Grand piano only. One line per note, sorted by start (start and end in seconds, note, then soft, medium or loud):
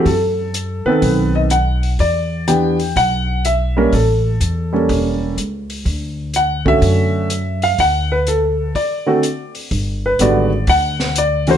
0.07 0.86 A4 medium
0.86 1.48 D#3 medium
0.86 1.48 B3 medium
0.86 1.48 C4 medium
0.86 1.48 A4 medium
0.86 1.31 B4 medium
1.35 1.41 D#5 medium
1.51 1.88 F#5 medium
2.00 2.50 D5 medium
2.48 2.76 E3 soft
2.48 2.77 B3 soft
2.48 2.77 D4 soft
2.48 2.77 G4 medium
2.48 2.98 G5 medium
2.97 3.41 F#5 medium
3.46 3.90 E5 medium
3.77 3.91 G3 medium
3.77 3.92 A#3 medium
3.77 3.92 C#4 medium
3.77 3.92 A#4 medium
3.94 4.72 A4 medium
4.73 5.34 G3 medium
4.73 5.35 A#3 medium
4.73 5.35 C#4 medium
4.73 5.35 A4 medium
6.36 6.65 F#5 medium
6.65 7.27 D3 medium
6.65 7.27 A3 medium
6.65 7.27 C#4 soft
6.65 7.28 F#4 medium
6.65 7.66 E5 loud
7.63 7.78 F5 medium
7.80 8.12 F#5 medium
8.12 8.27 B4 medium
8.28 8.72 A4 medium
8.76 9.51 D5 medium
9.06 9.22 D3 medium
9.06 9.22 A3 medium
9.06 9.22 C4 medium
9.06 9.22 F#4 medium
10.06 10.21 B4 medium
10.20 10.49 D3 medium
10.20 10.49 G3 medium
10.20 10.49 B3 medium
10.20 10.49 F#4 medium
10.20 10.70 D5 medium
10.69 11.18 F#5 medium
11.18 11.50 D5 medium
11.47 11.57 E3 medium
11.47 11.57 A3 medium
11.47 11.57 C#4 medium
11.47 11.57 F#4 medium
11.47 11.57 C5 medium